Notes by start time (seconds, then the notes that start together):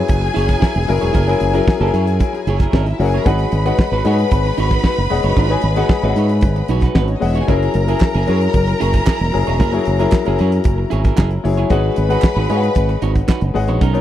Already playing: F#3 C#4 E4 G#4 A#4 B4 C#5 G#5
0.08 F#1, muted clean electric guitar stroke, kick, closed hi-hat
0.21 muted clean electric guitar stroke
0.34 F#1 E4 G#4 C#5, closed hi-hat
0.48 E4 G#4 A#4, kick, snare, closed hi-hat
0.60 E4 G#4 A#4, kick, snare
0.73 E1, muted clean electric guitar stroke, closed hi-hat
0.88 F#1 F#3 C#4 E4 G#4 A#4, muted clean electric guitar stroke, open hi-hat
1.01 E1 E4 G#4 C#5, closed hi-hat
1.13 F#1 E4 G#4 A#4, kick, closed hi-hat
1.27 F#3 C#4 E4 G#4 A#4, closed hi-hat
1.40 F#1, muted clean electric guitar stroke, closed hi-hat
1.53 F#3 C#4 E4 G#4 A#4, closed hi-hat
1.67 muted clean electric guitar stroke, kick, snare
1.80 F#1 F#3 C#4 E4 G#4 A#4, closed hi-hat
1.93 F#2 E4 G#4 C#5, closed hi-hat
2.07 muted clean electric guitar stroke, closed hi-hat
2.20 muted clean electric guitar stroke, kick, closed hi-hat
2.33 muted clean electric guitar stroke, closed hi-hat
2.47 F#1 E4 G#4 C#5, closed hi-hat
2.59 E4 G#4 A#4, kick, snare, closed hi-hat
2.71 G#1 C#4 E4 G#4 C#5, kick, snare
2.76 A#4
2.82 D#4 D#5
2.86 E4 E5, muted clean electric guitar stroke, closed hi-hat
2.99 F#1 F#3 C#4 E4 F#4 G#4 A#4 F#5, muted clean electric guitar stroke, open hi-hat
3.07 G#4 G#5
3.12 E4 G#4 C#5, closed hi-hat
3.17 A#4 A#5
3.25 G#1 G#3 D#4 F#4 G#4 B4 C#5 D#5 F#5 B5, kick, closed hi-hat
3.39 closed hi-hat
3.52 G#1, muted clean electric guitar stroke, closed hi-hat
3.65 G#3 D#4 F#4 G#4 B4 C#5 D#5 F#5, closed hi-hat
3.79 muted clean electric guitar stroke, kick, snare
3.92 G#1 D#4 F#4 B4
4.04 G#2 G#3 D#4 F#4 G#4 B4 C#5 D#5 F#5, closed hi-hat
4.19 muted clean electric guitar stroke, closed hi-hat
4.31 G#1, muted clean electric guitar stroke, kick, closed hi-hat
4.45 muted clean electric guitar stroke, closed hi-hat
4.58 G#1 D#4 F#4 C#5, closed hi-hat
4.70 D#4 F#4 B4, kick, snare, closed hi-hat
4.84 D#4 F#4 B4, kick, snare
4.97 F#1, muted clean electric guitar stroke
5.10 E1 G#3 G#4 B4 C#5 D#5 F#5, muted clean electric guitar stroke, open hi-hat
5.23 F#1 D#4 F#4 C#5, closed hi-hat
5.36 G#1 D#4 F#4 B4, kick, closed hi-hat
5.49 G#3 G#4 B4 C#5 D#5 G#5, closed hi-hat
5.62 G#1, muted clean electric guitar stroke, closed hi-hat
5.76 G#3 D#4 F#4 G#4 B4 C#5 D#5 F#5, closed hi-hat
5.89 muted clean electric guitar stroke, kick, snare
6.02 G#1 G#3 F#4 G#4 B4 C#5 D#5 E5, closed hi-hat
6.07 D#4 F#5
6.16 G#2 D#4 F#4 C#5, closed hi-hat
6.29 muted clean electric guitar stroke, closed hi-hat
6.41 G#1, muted clean electric guitar stroke, kick, closed hi-hat
6.56 muted clean electric guitar stroke, closed hi-hat
6.68 B1 D#4 F#4 C#5, closed hi-hat
6.81 D#4 F#4 B4, kick, snare, closed hi-hat
6.95 G#1 B3 D#4 F#4 B4, kick, snare
7.05 C#4 C#5, closed hi-hat
7.09 muted clean electric guitar stroke
7.15 D#4 D#5
7.20 E1 G#3 G#4 B4 C#5 D#5 F#5, muted clean electric guitar stroke, open hi-hat
7.24 E4 E5
7.33 D#4 F#4 C#5 F#5, closed hi-hat
7.42 G#4 G#5
7.47 F#1 F#3 C#4 E4 G#4 A#4, kick, closed hi-hat
7.51 A#4 A#5
7.62 closed hi-hat
7.74 F#1, muted clean electric guitar stroke, closed hi-hat
7.87 F#3 C#4 E4 G#4 A#4, closed hi-hat
8.01 muted clean electric guitar stroke, kick, snare, clap
8.14 F#1 E4 G#4 A#4, closed hi-hat
8.26 F#2 F#3 C#4 E4 G#4 A#4 C#5, closed hi-hat
8.41 muted clean electric guitar stroke, closed hi-hat
8.53 F#1, muted clean electric guitar stroke, kick, closed hi-hat
8.68 muted clean electric guitar stroke, closed hi-hat
8.80 F#1 E4 G#4 C#5, closed hi-hat
8.93 E4 G#4 A#4, kick, snare, closed hi-hat
9.07 E4 G#4 A#4, kick, snare, clap
9.19 E1, muted clean electric guitar stroke
9.32 F#1 F#3 C#4 E4 G#4 A#4, muted clean electric guitar stroke, open hi-hat
9.47 E1 E4 G#4 C#5, closed hi-hat
9.59 F#1 E4 G#4 A#4, kick, closed hi-hat
9.72 F#3 C#4 E4 G#4 C#5, closed hi-hat
9.85 F#1, muted clean electric guitar stroke, closed hi-hat
9.99 F#3 C#4 E4 G#4 A#4, closed hi-hat
10.12 muted clean electric guitar stroke, kick, snare, clap
10.25 F#1 F#3 C#4 E4 G#4 A#4, closed hi-hat
10.39 F#2 E4 G#4 C#5, closed hi-hat
10.52 muted clean electric guitar stroke, closed hi-hat
10.64 F#1, muted clean electric guitar stroke, kick, closed hi-hat
10.78 muted clean electric guitar stroke
10.90 G#1 E4 G#4 C#5, closed hi-hat
11.04 E4 G#4 A#4, kick, snare, closed hi-hat
11.16 F#1 E4 G#4 A#4, kick, snare, clap
11.31 muted clean electric guitar stroke, closed hi-hat
11.44 F#1 F#3 C#4 E4 G#4 C#5, muted clean electric guitar stroke, open hi-hat
11.57 E4 G#4 C#5, closed hi-hat
11.70 G#1 G#3 D#4 F#4 G#4 B4 C#5 D#5 F#5 B5, kick, closed hi-hat
11.96 G#1, muted clean electric guitar stroke, closed hi-hat
12.08 G#3 D#4 F#4 G#4 B4 C#5 D#5 F#5, closed hi-hat
12.22 muted clean electric guitar stroke, kick, snare, clap
12.36 G#1 D#4 F#4 B4, closed hi-hat
12.49 G#2 G#3 D#4 F#4 G#4 B4 C#5 D#5 F5, closed hi-hat
12.57 F#5
12.63 muted clean electric guitar stroke, closed hi-hat
12.75 G#1, kick, closed hi-hat
12.89 muted clean electric guitar stroke, closed hi-hat
13.02 G#1 D#4 F#4 C#5, closed hi-hat
13.14 muted clean electric guitar stroke, kick, closed hi-hat
13.28 D#4 F#4 B4, kick, snare, clap
13.41 F#1, muted clean electric guitar stroke, closed hi-hat
13.54 G#1 G#3 G#4 B4 C#5 D#5 F#5, muted clean electric guitar stroke, open hi-hat
13.68 A#1 D#4 F#4 C#5, closed hi-hat
13.81 B1 C#4 D#4 A#4 A#5, kick, closed hi-hat
13.93 B2 F#3 D#4 A#4 C#5, closed hi-hat